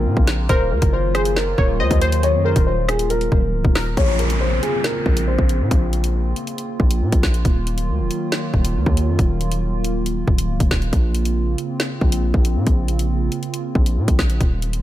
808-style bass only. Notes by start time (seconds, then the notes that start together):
0.06 A#2
0.17 A#1
0.49 D#1
0.71 D#2
0.82 F#1
1.58 D#1
1.80 D#2
1.91 D#2
2.34 F#2
2.56 D#1
3.32 D#1
3.54 C#1
3.65 D#1
3.97 A#1
5.06 A#1
5.38 A#1
5.60 A#2
5.71 A#1
6.80 A#1
7.01 A#2
7.12 A#1
7.23 A#1
7.45 D#1
7.88 D#2
7.99 D#1
8.54 D#1
8.75 D#2
8.86 D#2
9.08 F#2
9.19 D#1
10.27 D#1
10.49 C#1
10.60 D#1
10.71 D#1
10.93 A#1
12.01 A#1
12.34 A#1
12.56 A#2
12.67 A#1
13.75 A#1
13.97 A#2
14.08 A#1
14.19 A#1
14.41 D#1